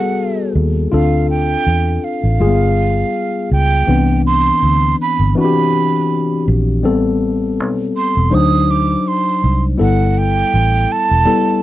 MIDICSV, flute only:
0, 0, Header, 1, 2, 480
1, 0, Start_track
1, 0, Tempo, 739827
1, 599, Time_signature, 4, 2, 24, 8
1, 7543, End_track
2, 0, Start_track
2, 0, Title_t, "Flute"
2, 0, Program_c, 0, 73
2, 0, Note_on_c, 0, 78, 79
2, 342, Note_off_c, 0, 78, 0
2, 609, Note_on_c, 0, 77, 67
2, 828, Note_off_c, 0, 77, 0
2, 843, Note_on_c, 0, 79, 83
2, 1324, Note_on_c, 0, 77, 73
2, 1333, Note_off_c, 0, 79, 0
2, 2282, Note_off_c, 0, 77, 0
2, 2289, Note_on_c, 0, 79, 88
2, 2738, Note_off_c, 0, 79, 0
2, 2767, Note_on_c, 0, 84, 97
2, 3217, Note_off_c, 0, 84, 0
2, 3255, Note_on_c, 0, 83, 81
2, 3471, Note_off_c, 0, 83, 0
2, 3500, Note_on_c, 0, 83, 83
2, 4184, Note_off_c, 0, 83, 0
2, 5168, Note_on_c, 0, 84, 80
2, 5413, Note_on_c, 0, 87, 91
2, 5423, Note_off_c, 0, 84, 0
2, 5648, Note_on_c, 0, 86, 88
2, 5658, Note_off_c, 0, 87, 0
2, 5889, Note_on_c, 0, 84, 83
2, 5899, Note_off_c, 0, 86, 0
2, 6253, Note_off_c, 0, 84, 0
2, 6365, Note_on_c, 0, 78, 73
2, 6604, Note_on_c, 0, 79, 88
2, 6614, Note_off_c, 0, 78, 0
2, 7084, Note_on_c, 0, 81, 91
2, 7094, Note_off_c, 0, 79, 0
2, 7543, Note_off_c, 0, 81, 0
2, 7543, End_track
0, 0, End_of_file